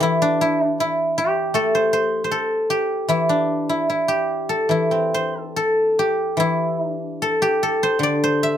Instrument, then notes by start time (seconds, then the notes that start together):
guzheng
Already playing: G4 A4 C5 D5 E5 G5 A5 C6
0.00 E3 E4
0.22 D4
0.41 E4
0.64 D4
0.80 E4
1.18 G4
1.54 A3 A4
1.75 C5
1.93 C5
2.24 C5
2.31 A4
2.70 G4
3.09 E3 E4
3.29 D4
3.69 E4
3.90 E4
4.08 G4
4.49 A4
4.69 E3 E4
4.91 C4
5.14 C5
5.34 D#4
5.40 A4
5.49 D4
5.56 A4
5.99 G4
6.37 E3 E4
6.90 D4
7.22 A4
7.42 G4
7.63 A4
7.83 C5
7.99 D3
8.03 D5
8.24 C5
8.43 E5